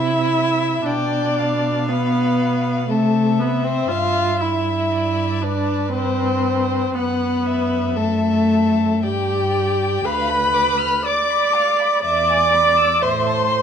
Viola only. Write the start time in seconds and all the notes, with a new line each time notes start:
Already playing: E4
0.85 D4
1.89 B3
2.89 A3
3.40 B3
3.65 C4
3.89 F4
4.41 E4
5.42 D4
5.93 C4
6.95 B3
7.96 A3
9.04 G4
10.06 B4
11.06 D5
12.03 D5
13.03 C5